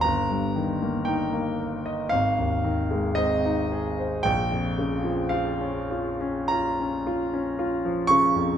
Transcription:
<<
  \new Staff \with { instrumentName = "Grand piano" } { \time 4/4 \key bes \dorian \tempo 4 = 56 bes''4 g''4 f''4 ees''4 | g''4 f''4 bes''4. des'''8 | }
  \new Staff \with { instrumentName = "Grand piano" } { \time 4/4 \key bes \dorian g,,16 g,16 ees16 bes16 ees'16 bes16 bes'16 ees''16 aes,,16 ees,16 ees16 aes16 c'16 ees'16 aes'16 c''16 | bes,,16 f,16 des16 f16 f'16 des'16 f'16 des'16 f'16 des'16 f'16 des'16 f'16 f16 des16 f,16 | }
>>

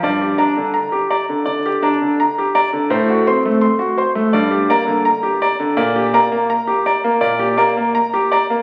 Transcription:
<<
  \new Staff \with { instrumentName = "Grand piano" } { \time 4/4 \key g \minor \tempo 4 = 84 d''16 g'16 <d'' bes''>16 d16 bes''16 g'16 <d'' bes''>16 d16 d''16 g'16 <d'' bes''>16 d16 bes''16 g'16 <d'' bes''>16 d16 | c''16 fis'16 <c'' c'''>16 a16 c'''16 fis'16 <c'' c'''>16 a16 d''16 g'16 <d'' bes''>16 d16 bes''16 g'16 <d'' bes''>16 d16 | d''16 g'16 <d'' bes''>16 bes16 bes''16 g'16 <d'' bes''>16 bes16 d''16 g'16 <d'' bes''>16 bes16 bes''16 g'16 <d'' bes''>16 bes16 | }
  \new Staff \with { instrumentName = "Grand piano" } { \clef bass \time 4/4 \key g \minor g,8 d'8 r4 d8 d'8 r4 | a,8 c'8 r4 g,8 bes8 r4 | bes,8 bes8 r4 bes,8 bes8 r4 | }
>>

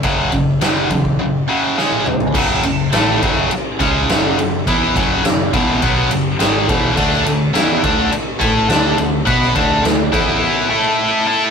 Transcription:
<<
  \new Staff \with { instrumentName = "Distorted electric guitar" } { \clef bass \time 4/4 \key fis \minor \tempo 4 = 104 <fis, cis fis>8 <fis, cis>8 <fis, cis fis>8 <fis, cis>8 <fis, cis>8 <fis, cis fis>8 <cis gis cis'>8 <cis gis>8 | <fis, cis fis>8 <fis, cis>8 <a, e a>8 <fis, cis fis>8 r8 <cis gis cis'>8 <fis, cis fis>8 <fis, cis>8 | <e b e'>8 <fis, cis fis>8 <fis, cis>8 <e, b, e>8 <b, fis b>8 <fis, cis>8 <gis, dis gis>8 <e, b, e>8 | <d a d'>8 <d a>8 <e b e'>8 <d a d'>8 r8 <a e' a'>8 <d a d'>8 <d a>8 |
<b fis' b'>8 <d a d'>8 <d a>8 <e b e'>4 <a e' a'>4 <a e' a'>8 | }
  \new Staff \with { instrumentName = "Picked electric bass" } { \clef bass \time 4/4 \key fis \minor fis,,8 fis,,8 fis,,8 e,8 r2 | fis,,8 fis,,8 a,,8 fis,,8 r8 cis,8 fis,,8 fis,,8 | e,8 fis,,8 fis,,8 e,,8 b,,8 fis,,8 gis,,8 e,,8 | d,8 d,8 e,8 d,8 r8 a,8 d,8 d,8 |
b,8 d,8 d,8 e,8 r2 | }
  \new DrumStaff \with { instrumentName = "Drums" } \drummode { \time 4/4 <bd cymr>8 <bd cymr>8 <cymr sn>8 <bd cymr>16 bd16 r4 sn16 tommh16 toml16 tomfh16 | <cymc bd>8 cymr8 <cymr sn>8 <bd cymr>8 cymr8 <bd cymr>8 <cymr sn>8 cymr8 | <bd cymr>8 <bd cymr>8 <cymr sn>8 <bd cymr>8 <bd cymr>8 cymr8 <cymr sn>8 <bd cymr>8 | <cymc bd>16 sn16 cymr8 <cymr sn>8 <bd cymr>8 cymr8 <bd cymr>8 <cymr sn>8 cymr8 |
<bd cymr>16 sn16 <bd cymr>8 <cymr sn>8 <bd cymr>8 r4 r4 | }
>>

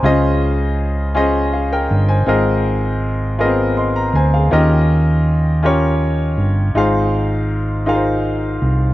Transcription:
<<
  \new Staff \with { instrumentName = "Grand piano" } { \time 6/8 \key aes \major \tempo 4. = 54 << { aes''16 r4. r16 <aes' f''>16 <bes' g''>8 <c'' aes''>16~ | <c'' aes''>16 r4. r16 <ees'' c'''>16 bes''16 <c'' aes''>16 <aes' f''>16~ | <aes' f''>16 r2 r8. | r2. | } \\ { <des' f' aes' c'' ees''>4 r8 <des' f' aes' c'' ees''>4 r8 | <c' f' aes' bes' ees''>4 r8 <ces' c' f' aes' bes' ees''>4 r8 | <des' f' g' bes' ees''>4 r8 <des' f' g' bes' des''>4 r8 | <ees' f' aes' c'' f''>4 r8 <ees' f' aes' bes' c'' f''>4 r8 | } >> }
  \new Staff \with { instrumentName = "Grand piano" } { \clef bass \time 6/8 \key aes \major des4. r4. | aes,4. r4. | ees4. r4. | aes,4. r4. | }
  \new Staff \with { instrumentName = "Fingered electric bass" } { \clef bass \time 6/8 \key aes \major des,2~ des,8 g,,8 | aes,,2~ aes,,8 d,8 | ees,2~ ees,8 g,,8 | aes,,2~ aes,,8 c,8 | }
>>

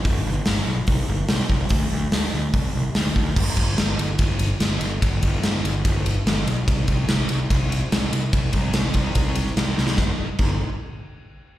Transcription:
<<
  \new Staff \with { instrumentName = "Picked electric bass" } { \clef bass \time 4/4 \key c \lydian \tempo 4 = 145 g,,8 g,,8 g,,8 b,,8 c,8 g,,8 c,8 c,8 | d,8 d,8 d,8 d,8 c,8 c,8 d,8 d,8 | g,,8 g,,8 g,,8 g,,8 g,,4 g,,8 g,,8 | g,,8 g,,8 g,,8 g,,8 g,,4 g,,8 b,,8 |
c,8 c,8 c,8 c,8 c,4 c,8 c,8 | c,8 c,8 c,8 c,8 c,4 c,8 c,8 | g,,8 r8 g,,8 r2 r8 | }
  \new DrumStaff \with { instrumentName = "Drums" } \drummode { \time 4/4 <hho bd>4 <hho sn>4 <hho bd>4 <hho sn>8 bd8 | <hho bd>4 <hho sn>4 <hho bd>4 <hho sn>8 bd8 | <cymc bd>8 <bd cymr>8 <cymr sn>8 cymr8 <bd cymr>8 cymr8 <cymr sn>8 cymr8 | <bd cymr>8 <bd cymr>8 <cymr sn>8 cymr8 <bd cymr>8 cymr8 <cymr sn>8 cymr8 |
<bd cymr>8 <bd cymr>8 <cymr sn>8 cymr8 <bd cymr>8 cymr8 <cymr sn>8 cymr8 | <bd cymr>8 <bd cymr>8 <cymr sn>8 <bd cymr>8 <bd cymr>8 cymr16 sn16 <cymr sn>8 sn16 sn16 | <bd sn>4 <cymc bd>4 r4 r4 | }
>>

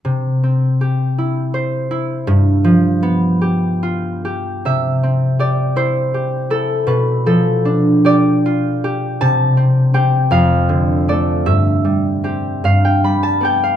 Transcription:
\new Staff \with { instrumentName = "Harp" } { \time 6/8 \key c \major \tempo 4. = 52 << { r2. | r2. | e''4 d''8 c''4 a'8 | b'8 a'4 d''4. |
a''4 g''8 f''4 d''8 | e''4. f''16 g''16 b''16 a''16 g''16 f''16 | } \\ { c8 c'8 g'8 e'8 c''8 e'8 | g,8 f8 b8 g'8 f'8 g'8 | c8 c'8 g'8 e'8 g'8 e'8 | b,8 f8 d'8 g'8 f'8 g'8 |
c8 c'8 <c' g'>8 f,8 d8 <a a'>8 | g,8 g8 <c' g'>8 g,8 g8 <b g'>8 | } >> }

